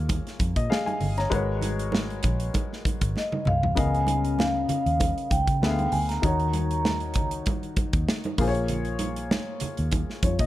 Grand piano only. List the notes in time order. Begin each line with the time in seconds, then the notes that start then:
Already playing: A#3 F4 G#4 C#5
0.56 D#5
0.70 G#4 F5
0.86 G#5
1.18 C#5 A#5
1.30 G#3 F#4 A#4 B4 C#5
3.75 C#3 B3 A#4 D#5 F5
5.62 D3 B3 G#4 E5
5.70 F5
6.22 D#3 D#4 F#4 C#5
8.38 A#3 F4 G#4 C5
8.48 C#5
10.24 F4 C#5
10.40 D#5